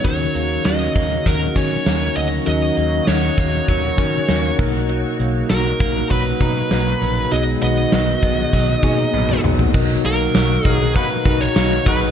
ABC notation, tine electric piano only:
X:1
M:4/4
L:1/8
Q:1/4=99
K:B
V:1 name="Tine electric piano"
[CDFA]4 z [CDFA]3 | [CDFA]4 z [CDFA]2 [A,DFA]- | [A,DFA]3 z2 [B,,DFa]3 | [B,DFG]4 z [A,B,DFG]3 |
[DFAd]4 z [DFAd]2 [DFGBd] |]
V:2 name="Tine electric piano" clef=bass
D,3 z4 z | D,3 z4 B,,- | B,,2 z6 | B,,3 z4 z |
B,,3 z4 B,, |]